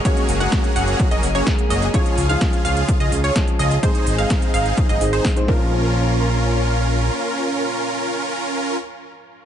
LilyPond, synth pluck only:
\new Staff \with { instrumentName = "Synth pluck" } { \time 4/4 \key bes \minor \tempo 4 = 127 des''8. ges''8. ges''8. ees''16 r16 des''16 r8 ees''16 r16 | des''8. f''8. f''8. ees''16 r16 des''16 r8 ees''16 r16 | c''8. f''8. f''8. ees''16 r16 c''16 r8 bes'8~ | bes'1~ |
bes'1 | }